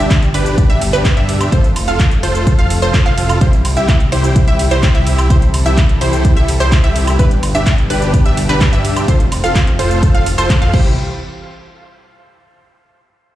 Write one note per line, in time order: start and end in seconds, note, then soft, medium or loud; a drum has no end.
0.00 0.32 G1 loud
0.00 1.50 B2 medium
0.00 1.50 D3 medium
0.00 1.50 G3 medium
0.00 0.12 D4 medium
0.00 1.50 D4 medium
0.00 0.12 G4 medium
0.00 1.48 G4 medium
0.00 0.12 E5 medium
0.11 kick loud
0.11 clap loud
0.11 closed hi-hat medium
0.11 shaker medium
0.22 closed hi-hat soft
0.22 shaker soft
0.34 0.67 G1 loud
0.34 0.67 D4 medium
0.34 0.67 G4 medium
0.34 0.67 B4 loud
0.34 open hi-hat medium
0.34 ride medium
0.46 closed hi-hat soft
0.46 shaker medium
0.58 kick loud
0.58 closed hi-hat medium
0.58 shaker medium
0.70 0.91 G1 loud
0.70 0.83 D4 loud
0.70 0.83 G4 medium
0.70 0.83 E5 loud
0.70 closed hi-hat soft
0.70 shaker soft
0.81 open hi-hat loud
0.81 ride medium
0.93 1.15 G1 medium
0.93 1.13 D4 loud
0.93 1.13 G4 loud
0.93 1.13 B4 loud
0.93 clap soft
0.93 shaker medium
1.05 kick loud
1.05 clap loud
1.05 closed hi-hat medium
1.05 shaker medium
1.17 1.50 G2 loud
1.17 1.50 D4 medium
1.17 1.50 G4 medium
1.17 1.49 E5 loud
1.17 1.50 E5 loud
1.17 closed hi-hat soft
1.17 shaker soft
1.29 open hi-hat loud
1.29 ride medium
1.41 closed hi-hat soft
1.41 high woodblock medium
1.41 shaker medium
1.52 1.85 F1 loud
1.52 7.15 C3 medium
1.52 3.40 F3 medium
1.52 3.40 A3 medium
1.52 1.65 F4 medium
1.52 3.39 F4 medium
1.52 1.65 A4 medium
1.52 3.40 A4 medium
1.52 1.65 C5 loud
1.52 kick loud
1.52 closed hi-hat medium
1.52 shaker medium
1.64 closed hi-hat soft
1.64 shaker soft
1.76 open hi-hat loud
1.76 ride medium
1.76 high woodblock medium
1.88 2.21 F1 loud
1.88 2.01 F4 medium
1.88 2.01 A4 medium
1.88 2.01 F5 medium
1.88 closed hi-hat soft
1.88 shaker medium
2.00 kick loud
2.00 clap loud
2.00 closed hi-hat medium
2.00 shaker medium
2.11 closed hi-hat soft
2.11 shaker soft
2.23 2.56 F1 medium
2.23 2.56 F4 medium
2.23 2.56 A4 medium
2.23 2.56 C5 medium
2.23 open hi-hat medium
2.23 ride medium
2.35 closed hi-hat soft
2.35 shaker medium
2.47 kick loud
2.47 closed hi-hat medium
2.47 shaker medium
2.59 2.80 F1 loud
2.59 2.72 F4 loud
2.59 2.72 A4 medium
2.59 2.72 F5 loud
2.59 closed hi-hat soft
2.59 shaker soft
2.70 open hi-hat loud
2.70 ride medium
2.82 3.04 F1 medium
2.82 3.02 F4 loud
2.82 3.02 A4 loud
2.82 3.02 C5 loud
2.82 closed hi-hat soft
2.82 shaker medium
2.94 kick loud
2.94 clap loud
2.94 closed hi-hat medium
2.94 shaker medium
3.06 3.39 F1 medium
3.06 3.38 F4 medium
3.06 3.38 A4 medium
3.06 3.38 F5 loud
3.06 3.39 F5 loud
3.06 clap soft
3.06 closed hi-hat soft
3.06 shaker soft
3.18 open hi-hat medium
3.18 ride medium
3.29 closed hi-hat soft
3.29 high woodblock medium
3.29 shaker medium
3.41 3.74 C2 loud
3.41 7.16 E3 medium
3.41 9.04 G3 medium
3.41 7.16 E4 medium
3.41 3.54 G4 medium
3.41 5.28 G4 medium
3.41 3.54 C5 loud
3.41 kick loud
3.41 closed hi-hat medium
3.41 shaker medium
3.53 closed hi-hat soft
3.53 shaker soft
3.65 open hi-hat loud
3.65 ride medium
3.65 high woodblock medium
3.77 4.10 C2 loud
3.77 3.90 E4 medium
3.77 3.90 G4 medium
3.77 3.90 E5 medium
3.77 closed hi-hat soft
3.77 shaker medium
3.88 kick loud
3.88 clap loud
3.88 closed hi-hat medium
3.88 shaker medium
4.00 closed hi-hat soft
4.00 shaker soft
4.12 4.45 C2 loud
4.12 4.45 E4 medium
4.12 4.45 G4 medium
4.12 4.45 C5 medium
4.12 open hi-hat medium
4.12 ride medium
4.24 closed hi-hat soft
4.24 shaker medium
4.36 kick loud
4.36 closed hi-hat medium
4.36 shaker medium
4.48 4.69 C2 loud
4.48 4.61 E4 medium
4.48 4.61 G4 medium
4.48 4.61 E5 loud
4.48 closed hi-hat soft
4.48 shaker soft
4.59 open hi-hat loud
4.59 ride medium
4.71 4.93 C2 medium
4.71 4.91 E4 loud
4.71 4.91 G4 medium
4.71 4.91 C5 loud
4.71 clap soft
4.71 closed hi-hat soft
4.71 shaker medium
4.83 kick loud
4.83 clap loud
4.83 closed hi-hat medium
4.83 shaker medium
4.95 5.28 C2 loud
4.95 5.27 E4 medium
4.95 5.27 G4 medium
4.95 5.27 E5 loud
4.95 closed hi-hat soft
4.95 shaker soft
5.07 open hi-hat loud
5.07 ride medium
5.18 closed hi-hat soft
5.18 high woodblock medium
5.18 shaker medium
5.30 5.63 C2 loud
5.30 5.43 E4 medium
5.30 5.43 G4 medium
5.30 7.17 A4 medium
5.30 5.43 C5 loud
5.30 kick loud
5.30 closed hi-hat medium
5.30 shaker medium
5.42 closed hi-hat soft
5.42 shaker soft
5.54 open hi-hat loud
5.54 ride medium
5.54 high woodblock medium
5.66 5.99 C2 loud
5.66 5.79 E4 medium
5.66 5.79 G4 medium
5.66 5.79 E5 medium
5.66 closed hi-hat soft
5.66 shaker medium
5.78 kick loud
5.78 clap loud
5.78 closed hi-hat medium
5.78 shaker medium
5.89 closed hi-hat soft
5.89 shaker soft
6.01 6.34 C2 loud
6.01 6.34 E4 medium
6.01 6.34 G4 medium
6.01 6.34 C5 medium
6.01 open hi-hat medium
6.01 ride medium
6.13 closed hi-hat soft
6.13 shaker medium
6.25 kick loud
6.25 closed hi-hat medium
6.25 shaker medium
6.37 6.58 C2 loud
6.37 6.50 E4 loud
6.37 6.50 G4 medium
6.37 6.50 E5 loud
6.37 closed hi-hat soft
6.37 shaker soft
6.48 open hi-hat loud
6.48 ride medium
6.60 6.82 C2 loud
6.60 6.80 E4 loud
6.60 6.80 G4 medium
6.60 6.80 C5 loud
6.60 closed hi-hat soft
6.60 shaker medium
6.72 kick loud
6.72 clap loud
6.72 closed hi-hat medium
6.72 shaker medium
6.84 7.17 C2 loud
6.84 7.16 E4 medium
6.84 7.16 G4 medium
6.84 7.16 E5 loud
6.84 closed hi-hat soft
6.84 shaker soft
6.96 open hi-hat medium
6.96 ride medium
7.07 closed hi-hat soft
7.07 high woodblock medium
7.07 shaker medium
7.19 9.06 B2 medium
7.19 9.06 D3 medium
7.19 7.32 D4 medium
7.19 9.06 D4 medium
7.19 9.06 G4 loud
7.19 7.32 B4 loud
7.19 kick loud
7.19 closed hi-hat medium
7.19 shaker medium
7.31 closed hi-hat soft
7.31 shaker soft
7.43 open hi-hat loud
7.43 ride medium
7.43 high woodblock medium
7.55 7.88 G1 loud
7.55 7.68 D4 medium
7.55 7.68 G4 medium
7.55 7.68 E5 medium
7.55 closed hi-hat soft
7.55 shaker medium
7.66 kick loud
7.66 clap loud
7.66 closed hi-hat medium
7.66 shaker medium
7.78 closed hi-hat soft
7.78 shaker soft
7.90 8.23 G1 loud
7.90 8.23 D4 medium
7.90 8.23 G4 medium
7.90 8.23 B4 medium
7.90 open hi-hat medium
7.90 ride medium
8.02 closed hi-hat soft
8.02 shaker medium
8.14 kick loud
8.14 closed hi-hat medium
8.14 shaker medium
8.26 8.47 G1 loud
8.26 8.39 D4 loud
8.26 8.39 G4 medium
8.26 8.39 E5 loud
8.26 closed hi-hat soft
8.26 shaker soft
8.37 open hi-hat loud
8.37 ride medium
8.49 8.70 G1 loud
8.49 8.69 D4 loud
8.49 8.69 G4 loud
8.49 8.69 B4 loud
8.49 clap soft
8.49 closed hi-hat soft
8.49 shaker medium
8.61 kick loud
8.61 clap loud
8.61 closed hi-hat medium
8.61 shaker medium
8.73 9.06 G2 loud
8.73 9.05 D4 medium
8.73 9.05 G4 medium
8.73 9.05 E5 loud
8.73 closed hi-hat soft
8.73 shaker soft
8.85 open hi-hat medium
8.85 ride medium
8.96 closed hi-hat soft
8.96 high woodblock medium
8.96 shaker medium
9.08 9.41 F1 loud
9.08 10.72 A2 medium
9.08 10.72 C3 medium
9.08 10.72 F3 medium
9.08 10.72 C4 medium
9.08 9.21 F4 medium
9.08 10.72 F4 medium
9.08 9.21 A4 medium
9.08 9.21 C5 loud
9.08 kick loud
9.08 closed hi-hat medium
9.08 shaker medium
9.20 closed hi-hat soft
9.20 shaker soft
9.32 open hi-hat loud
9.32 ride medium
9.32 high woodblock medium
9.44 9.77 F1 loud
9.44 9.57 F4 medium
9.44 9.57 A4 medium
9.44 9.57 F5 medium
9.44 closed hi-hat soft
9.44 shaker medium
9.55 kick loud
9.55 clap loud
9.55 closed hi-hat medium
9.55 shaker medium
9.67 closed hi-hat soft
9.67 shaker soft
9.79 10.12 F1 loud
9.79 10.12 F4 medium
9.79 10.12 A4 medium
9.79 10.12 C5 medium
9.79 open hi-hat medium
9.79 ride medium
9.91 closed hi-hat soft
9.91 shaker medium
10.03 kick loud
10.03 closed hi-hat medium
10.03 shaker medium
10.15 10.36 F1 loud
10.15 10.28 F4 medium
10.15 10.28 A4 medium
10.15 10.28 F5 loud
10.15 closed hi-hat soft
10.15 shaker soft
10.26 open hi-hat loud
10.26 ride medium
10.38 10.59 F1 loud
10.38 10.58 F4 loud
10.38 10.58 A4 medium
10.38 10.58 C5 loud
10.38 closed hi-hat soft
10.38 shaker medium
10.50 kick loud
10.50 clap loud
10.50 closed hi-hat medium
10.50 shaker medium
10.62 10.73 F2 medium
10.62 10.74 F4 medium
10.62 10.74 A4 medium
10.62 10.74 F5 loud
10.62 closed hi-hat soft
10.62 shaker soft
10.74 10.96 C2 medium
10.74 10.96 C3 medium
10.74 10.96 E3 medium
10.74 10.96 G3 medium
10.74 10.91 E4 medium
10.74 10.96 E4 medium
10.74 10.91 G4 medium
10.74 10.96 G4 medium
10.74 10.91 C5 loud
10.74 kick loud
10.74 crash medium